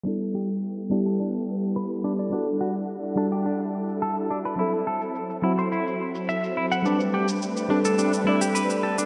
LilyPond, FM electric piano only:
\new Staff \with { instrumentName = "FM electric piano" } { \time 4/4 \key g \major \tempo 4 = 106 <g b e' a'>4. <g b e' g'>8 r2 | <g d' fis' a'>4. <g d' fis' a'>8 r2 | <fis c' e' a'>4. <fis c' e' fis'>8 r2 | <g c' d' b'>4. <g c' d' a'>8 r8 <g c' d' d''>4. | }